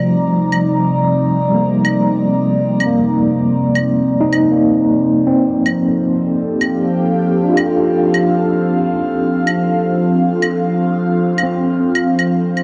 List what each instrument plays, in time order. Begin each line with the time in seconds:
Already playing: analog synth pad C3 C4 D#4 D5 A#5, tine electric piano F3 A3
0.52 claves
1.49 tine electric piano G3
1.54 tine electric piano A#3
1.85 claves
2.80 claves
2.86 tine electric piano A#3
3.75 claves
4.21 tine electric piano D#4
4.33 claves
4.52 tine electric piano A#3
5.27 analog synth pad F3, tine electric piano C4
5.61 analog synth pad A4
5.66 claves
6.18 analog synth pad G4
6.35 analog synth pad F5
6.61 claves
7.44 tine electric piano D4
7.49 tine electric piano F4
7.54 tine electric piano G4, claves
8.14 claves
9.47 claves
9.56 analog synth pad F4
10.42 claves
11.38 claves
11.43 tine electric piano C4
11.95 claves
12.19 claves
12.57 claves